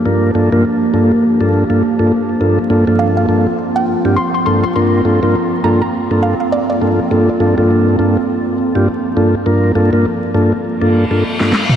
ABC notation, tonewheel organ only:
X:1
M:4/4
L:1/16
Q:"Swing 16ths" 1/4=102
K:Gm
V:1 name="Tonewheel organ"
[G,,B,DFB]2 [G,,B,DFA] [G,,B,DFB] z2 [G,,B,DFA] z2 [G,,B,DFA]2 [G,,B,DFA] z [G,,B,DFA] z2 | [G,,B,DFA] z [G,,B,DFA] [G,,B,DFA]3 [G,,B,DFA] z4 [G,,B,DFG] z2 [G,,B,DFA] z | [G,,B,DFB]2 [G,,B,DFA] [G,,B,DFB] z2 [G,,B,DFA] z2 [G,,B,DFA]2 z3 [G,,B,DFA] z | [G,,B,DFA] z [G,,B,DFA] [G,,B,DFA]3 [G,,B,DFA] z4 [G,,B,DFG] z2 [G,,B,DFA] z |
[G,,B,DFB]2 [G,,B,DFA] [G,,B,DFB] z2 [G,,B,DFA] z2 [G,,B,DFA]2 [G,,B,DFA] z [G,,B,DFA] z2 |]